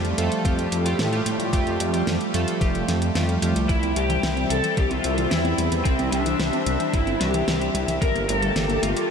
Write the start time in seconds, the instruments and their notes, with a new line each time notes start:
Already playing: detuned saw bass F2, analog synth pad F3 G3 A3, analog polysynth A3 F4 G4
0.05 closed hi-hat
0.18 detuned saw bass F2, analog polysynth A3 F4 A4, closed hi-hat
0.32 closed hi-hat
0.45 detuned saw bass F2, analog polysynth A3 F4 G4, kick, closed hi-hat
0.59 closed hi-hat
0.72 detuned saw bass F2, closed hi-hat
0.85 analog polysynth A3 F4 G4, closed hi-hat
0.99 detuned saw bass A2, snare, closed hi-hat
1.12 analog polysynth A3 F4 G4, closed hi-hat
1.26 detuned saw bass A2, closed hi-hat
1.39 detuned saw bass A2, closed hi-hat
1.53 detuned saw bass F2, analog polysynth A3 F4 G4, kick, closed hi-hat
1.66 detuned saw bass F2, closed hi-hat
1.80 detuned saw bass F2, closed hi-hat
1.93 analog polysynth A3 F4 G4, closed hi-hat
2.07 detuned saw bass F2, snare, closed hi-hat
2.21 closed hi-hat
2.34 detuned saw bass F2, analog polysynth A3 F4 A4, closed hi-hat
2.48 closed hi-hat
2.61 detuned saw bass F1, analog polysynth A3 F4 G4, kick, closed hi-hat
2.75 closed hi-hat
2.88 detuned saw bass F2, snare, closed hi-hat
3.02 closed hi-hat
3.15 detuned saw bass F2, analog polysynth A3 F4 G4, snare, closed hi-hat
3.29 closed hi-hat
3.42 detuned saw bass F2, analog polysynth A3 F4 G4, closed hi-hat
3.56 detuned saw bass C2, closed hi-hat
3.69 detuned saw bass C2, analog synth pad G3 C4 E5, lead electric guitar E4, kick, closed hi-hat
3.82 detuned saw bass C2, synth arpeggio sound C4, closed hi-hat
3.96 detuned saw bass C2, synth arpeggio sound G3, lead electric guitar G4, closed hi-hat
4.10 synth arpeggio sound E3, closed hi-hat
4.23 detuned saw bass C2, snare, closed hi-hat
4.37 synth arpeggio sound C4, closed hi-hat
4.50 detuned saw bass C2, synth arpeggio sound G3, lead electric guitar A4, closed hi-hat
4.64 synth arpeggio sound E3, closed hi-hat
4.77 detuned saw bass C2, lead electric guitar G4, kick, closed hi-hat
4.90 synth arpeggio sound C4, lead electric guitar F4, closed hi-hat
5.04 detuned saw bass C2, synth arpeggio sound G3, closed hi-hat
5.18 synth arpeggio sound E3, closed hi-hat
5.31 detuned saw bass E2, lead electric guitar E4, snare, closed hi-hat
5.45 synth arpeggio sound C4, closed hi-hat
5.58 detuned saw bass E2, synth arpeggio sound G3, closed hi-hat
5.72 detuned saw bass E2, synth arpeggio sound E3, closed hi-hat
5.85 detuned saw bass C2, lead electric guitar C4, kick, closed hi-hat
5.99 detuned saw bass C2, synth arpeggio sound C4, closed hi-hat
6.12 detuned saw bass C2, synth arpeggio sound G3, lead electric guitar D4, closed hi-hat
6.26 synth arpeggio sound E3, closed hi-hat
6.39 detuned saw bass C2, snare, closed hi-hat
6.53 synth arpeggio sound C4, closed hi-hat
6.66 detuned saw bass C2, synth arpeggio sound G3, closed hi-hat
6.80 synth arpeggio sound E3, closed hi-hat
6.93 detuned saw bass G1, lead electric guitar E4, kick, closed hi-hat
7.07 synth arpeggio sound C4, closed hi-hat
7.20 detuned saw bass C2, synth arpeggio sound G3, lead electric guitar G4, snare, closed hi-hat
7.34 synth arpeggio sound E3, closed hi-hat
7.48 detuned saw bass C2, snare, closed hi-hat
7.61 synth arpeggio sound C4, closed hi-hat
7.74 detuned saw bass C2, synth arpeggio sound G3, closed hi-hat
7.88 detuned saw bass C2, synth arpeggio sound E3, closed hi-hat
8.02 detuned saw bass G1, analog synth pad A3 A#3 G4, lead electric guitar A#4, kick, closed hi-hat
8.15 detuned saw bass G1, synth arpeggio sound A#3, closed hi-hat
8.29 detuned saw bass G1, synth arpeggio sound A3, lead electric guitar A4, closed hi-hat
8.42 synth arpeggio sound G3, closed hi-hat
8.56 detuned saw bass G1, snare, closed hi-hat
8.69 synth arpeggio sound A#3, closed hi-hat
8.83 detuned saw bass G1, synth arpeggio sound A3, lead electric guitar F4, closed hi-hat
8.96 synth arpeggio sound G3, closed hi-hat